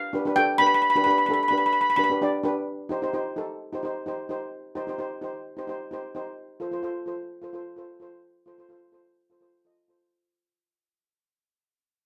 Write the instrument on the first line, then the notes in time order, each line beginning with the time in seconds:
steel pan
Already playing: F5
0.13 D4 G4 B4
0.25 D4 G4 B4
0.36 D4 G4 A4 G5
0.58 D4 G4 B4 B5
0.67 B5
0.74 B5
0.82 B5
0.90 B5
0.96 D4 G4 B4 B5
1.04 D4 G4 B4 B5
1.11 B5
1.18 B5
1.26 D4 G4 B5
1.31 A4 B5
1.43 B5
1.48 D4 G4 B5
1.53 B4
1.58 B5
1.66 B5
1.73 B5
1.81 B5
1.90 B5
1.96 D4 G4 B4 B5
2.04 B5
2.10 D4 G4 B4
2.22 D4 G4 D5
2.43 D4 G4 B4
2.89 D#4 G4 C5
3.02 D#4 G4 C5
3.13 D#4 G4 C5
3.36 D#4 G4 A4
3.73 D#4 G4 C5
3.83 D#4 G4 C5
4.06 D#4 G4 C5
4.29 D#4 G4 C5
4.75 D#4 G4 C5
4.87 D#4 G4 C5
4.98 D#4 G4 C5
5.21 D#4 G4 C5
5.57 D#4 G4 C5
5.67 D#4 G4 C5
5.91 D#4 G4 C5
6.15 D#4 G4 C5
6.60 F4 A4 C5
6.71 F4 A4 C5
6.83 F4 A4 C5
7.06 F4 A4 C5
7.42 F4 A4 C5
7.53 F4 A4 C5
7.76 F4 A4 C5
8.00 F4 A4 C5
8.46 F4 A4 C5
8.58 F4 A4 C5
8.69 F4 A4 C5
8.92 F4 A4 C5
9.30 F4 A4 C5
9.41 F4 A4 C5
9.65 F4 A4 D#5
9.88 F4 A4 C5